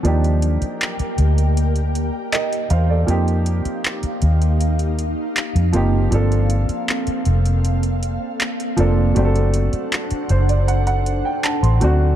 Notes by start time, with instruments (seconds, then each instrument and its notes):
0.03 fingered electric bass D#2, grand piano F3 A#3 D4 D#4 G4, ambient pad A#3 G4 A#4 G5, closed hi-hat
0.24 closed hi-hat
0.42 closed hi-hat
0.62 muted fingered electric bass stroke, closed hi-hat
0.81 clap, closed hi-hat
0.99 muted fingered electric bass stroke, closed hi-hat
1.18 fingered electric bass D2, closed hi-hat
1.38 closed hi-hat
1.57 closed hi-hat
1.76 closed hi-hat
1.95 closed hi-hat
2.33 grand piano A#4 D#5, clap, closed hi-hat
2.53 closed hi-hat
2.70 fingered electric bass E2, grand piano C5 F5, closed hi-hat
2.90 grand piano A4 D5
3.06 fingered electric bass F2, grand piano F3 A#3 C4 D#4 G4, ambient pad A#3 D#4 F5, closed hi-hat
3.28 closed hi-hat
3.46 closed hi-hat
3.65 muted fingered electric bass stroke, closed hi-hat
3.84 clap, closed hi-hat
4.03 muted fingered electric bass stroke, closed hi-hat
4.22 fingered electric bass D#2, closed hi-hat
4.42 closed hi-hat
4.61 closed hi-hat
4.79 closed hi-hat
4.99 closed hi-hat
5.37 clap, closed hi-hat
5.55 fingered electric bass F2, closed hi-hat
5.73 fingered electric bass F#1, grand piano F3 A#3 C4 D#4 G4, closed hi-hat
6.11 fingered electric bass G1, grand piano F3 A#3 C4 D4 A4, ambient pad C4 A4, closed hi-hat
6.32 closed hi-hat
6.50 closed hi-hat
6.69 closed hi-hat
6.88 clap, closed hi-hat
7.07 muted fingered electric bass stroke, closed hi-hat
7.25 fingered electric bass F1, closed hi-hat
7.46 closed hi-hat
7.65 closed hi-hat
7.83 closed hi-hat
8.03 closed hi-hat
8.41 clap, closed hi-hat
8.60 closed hi-hat
8.77 fingered electric bass F1, grand piano F3 A#3 C4 D4 A4, closed hi-hat
9.15 fingered electric bass F#1, grand piano F#3 A3 C4 D4 G4, ambient pad D4 C5 F#5, closed hi-hat
9.25 grand piano A4
9.36 closed hi-hat
9.54 closed hi-hat
9.73 muted fingered electric bass stroke, closed hi-hat
9.92 clap, closed hi-hat
10.11 muted fingered electric bass stroke, closed hi-hat
10.29 fingered electric bass F#1, grand piano C5, closed hi-hat
10.49 grand piano D5, closed hi-hat
10.68 grand piano F#5, closed hi-hat
10.87 grand piano F#5, closed hi-hat
11.06 closed hi-hat
11.25 grand piano G5
11.44 grand piano A5, clap, closed hi-hat
11.63 fingered electric bass A1, grand piano C6, closed hi-hat
11.80 fingered electric bass D2, grand piano F#3 A3 C4 D4 F#4, closed hi-hat